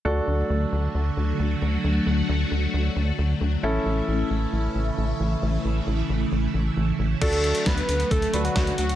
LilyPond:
<<
  \new Staff \with { instrumentName = "Analog synth lead" } { \time 4/4 \key d \major \tempo 4 = 134 r1 | r1 | r1 | r1 |
a'4 b'4 a'8. fis'8. fis'8 | }
  \new Staff \with { instrumentName = "Grand piano" } { \time 4/4 \key d \major <d' fis' a'>1~ | <d' fis' a'>1 | <cis' e' a'>1~ | <cis' e' a'>1 |
<d' fis' a'>4 r4. <d' fis' b'>4 r8 | }
  \new Staff \with { instrumentName = "String machine" } { \clef bass \time 4/4 \key d \major <d fis a fis'>1~ | <d fis a fis'>1 | <cis e a e'>1~ | <cis e a e'>1 |
<d fis a fis'>1 | }
  \new Staff \with { instrumentName = "Analog synth bass" } { \clef bass \time 4/4 \key d \major d,8 d,8 d,8 d,8 d,8 d,8 d,8 d,8 | d,8 d,8 d,8 d,8 d,8 d,8 d,8 d,8 | a,,8 a,,8 a,,8 a,,8 a,,8 a,,8 a,,8 a,,8 | a,,8 a,,8 a,,8 a,,8 a,,8 a,,8 a,,8 a,,8 |
d,4 d,8 d,8 d,8 d,8 d,8 d,8 | }
  \new DrumStaff \with { instrumentName = "Drums" } \drummode { \time 4/4 r4 r4 r4 r4 | r4 r4 r4 r4 | r4 r4 r4 r4 | r4 r4 r4 r4 |
<cymc hh bd>16 hh16 hh16 hh16 <hh bd sn>16 hh16 hh16 hh16 <hh bd>16 hh16 hh16 hh16 <hh bd sn>16 hh16 hh16 hh16 | }
>>